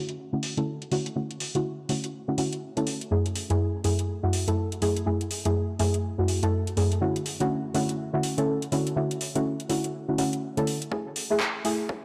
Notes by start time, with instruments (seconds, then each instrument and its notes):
Already playing: synth stab D3 A3 C#4 E4 F#4
0.09 closed hi-hat
0.33 synth stab D3 A3 C#4 E4 F#4
0.43 open hi-hat
0.57 synth stab D3 A3 C#4 E4 A4, closed hi-hat
0.82 closed hi-hat
0.91 synth stab D3 A3 C#4 E4 F#4, open hi-hat
1.06 closed hi-hat
1.16 synth stab D3 A3 C#4 E4 F#4
1.31 closed hi-hat
1.40 open hi-hat
1.55 synth stab D3 A3 C#4 E4 F#4, closed hi-hat
1.89 synth stab D3 A3 C#4 E4 F#4, open hi-hat
2.04 closed hi-hat
2.28 synth stab D3 A3 C#4 E4 F#4
2.38 synth stab D3 A3 C#4 E4 F#4, open hi-hat
2.53 closed hi-hat
2.77 synth stab D3 A3 C#4 E4 A4, closed hi-hat
2.87 open hi-hat
3.01 closed hi-hat
3.11 synth stab F#2 A3 E4 G#4
3.26 closed hi-hat
3.35 open hi-hat
3.50 synth stab F#2 A3 E4 G#4, closed hi-hat
3.84 synth stab F#2 A3 E4 G#4, open hi-hat
3.99 closed hi-hat
4.23 synth stab F#2 A3 E4 F#4
4.33 open hi-hat
4.47 synth stab F#2 A3 E4 A4, closed hi-hat
4.72 closed hi-hat
4.81 synth stab F#2 A3 E4 G#4, open hi-hat
4.96 closed hi-hat
5.06 synth stab F#2 A3 E4 G#4
5.21 closed hi-hat
5.31 open hi-hat
5.45 synth stab F#2 A3 E4 G#4, closed hi-hat
5.79 synth stab F#2 A3 E4 G#4, open hi-hat
5.94 closed hi-hat
6.18 synth stab F#2 A3 E4 F#4
6.28 open hi-hat
6.42 synth stab F#2 A3 E4 A4, closed hi-hat
6.67 closed hi-hat
6.77 synth stab F#2 A3 E4 G#4, open hi-hat
6.92 closed hi-hat
7.01 synth stab D3 A3 C#4 E4 F#4
7.16 closed hi-hat
7.26 open hi-hat
7.40 synth stab D3 A3 C#4 E4 F#4, closed hi-hat
7.74 synth stab D3 A3 C#4 E4 F#4, open hi-hat
7.89 closed hi-hat
8.13 synth stab D3 A3 C#4 E4 F#4
8.23 open hi-hat
8.38 synth stab D3 A3 C#4 E4 A4, closed hi-hat
8.62 closed hi-hat
8.72 synth stab D3 A3 C#4 E4 F#4, open hi-hat
8.87 closed hi-hat
8.96 synth stab D3 A3 C#4 E4 F#4
9.11 closed hi-hat
9.21 open hi-hat
9.35 synth stab D3 A3 C#4 E4 F#4, closed hi-hat
9.60 closed hi-hat
9.69 synth stab D3 A3 C#4 E4 F#4, open hi-hat
9.84 closed hi-hat
10.08 synth stab D3 A3 C#4 E4 F#4
10.18 synth stab D3 A3 C#4 E4 F#4, open hi-hat
10.33 closed hi-hat
10.57 synth stab D3 A3 C#4 E4 A4, closed hi-hat
10.67 open hi-hat
10.82 closed hi-hat
10.91 synth stab A3 E4 G#4, kick
11.16 open hi-hat
11.30 synth stab A3 E4 G#4
11.40 kick, clap
11.64 synth stab A3 E4 G#4, open hi-hat
11.89 kick